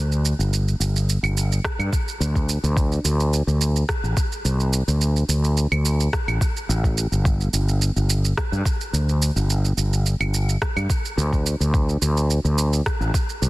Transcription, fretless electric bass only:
0.00 0.32 D2 medium
0.39 0.74 G1 medium
0.80 1.16 G1 medium
1.23 1.58 G1 medium
1.79 1.89 G2 medium
2.20 2.57 D2 medium
2.63 2.99 D2 medium
3.04 3.41 D2 medium
3.47 3.83 D2 medium
4.04 4.13 A1 medium
4.45 4.81 C2 medium
4.88 5.23 D2 medium
5.29 5.65 D2 medium
5.72 6.07 D2 medium
6.28 6.37 A1 medium
6.69 7.05 A1 loud
7.12 7.47 G1 loud
7.53 7.89 G1 medium
7.96 8.31 G1 medium
8.52 8.62 G2 medium
8.93 9.29 D2 medium
9.36 9.71 G1 medium
9.77 10.14 G1 medium
10.20 10.56 G1 medium
10.76 10.86 G2 medium
11.18 11.54 D2 loud
11.60 11.96 D2 medium
12.02 12.38 D2 medium
12.45 12.80 D2 medium
13.00 13.10 A1 medium
13.42 13.49 C2 medium

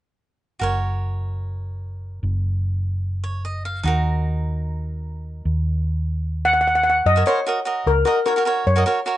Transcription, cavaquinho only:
0.59 3.79 F#4 medium
0.59 3.80 A#4 medium
0.59 3.22 C#5 medium
3.24 3.43 C#5 medium
3.45 3.63 D#5 medium
3.65 3.84 F5 medium
3.83 7.02 D#4 medium
3.83 7.03 F#4 medium
3.87 7.04 A#4 medium
7.16 7.22 F#4 medium
7.16 7.23 A#4 medium
7.16 7.23 C#5 medium
7.26 7.38 F#4 medium
7.26 7.39 A#4 medium
7.26 7.39 C5 medium
7.47 7.59 F#4 medium
7.47 7.59 A#4 medium
7.47 7.60 D#5 medium
7.65 7.90 F#4 medium
7.65 7.91 A#4 medium
7.65 7.91 D#5 medium
8.05 8.18 F#4 medium
8.05 8.19 A#4 medium
8.05 8.19 D#5 medium
8.26 8.32 F#4 medium
8.26 8.33 A#4 medium
8.26 8.33 C#5 medium
8.36 8.42 F#4 medium
8.36 8.43 A#4 medium
8.36 8.43 C#5 medium
8.45 8.64 F#4 medium
8.45 8.65 A#4 medium
8.45 8.65 C#5 medium
8.76 8.82 F#4 medium
8.76 8.83 A#4 medium
8.76 8.83 D#5 medium
8.86 8.99 F#4 medium
8.86 8.99 A#4 medium
8.86 8.99 C#5 medium
9.06 9.17 F#4 medium
9.06 9.17 A#4 medium
9.06 9.17 C#5 medium

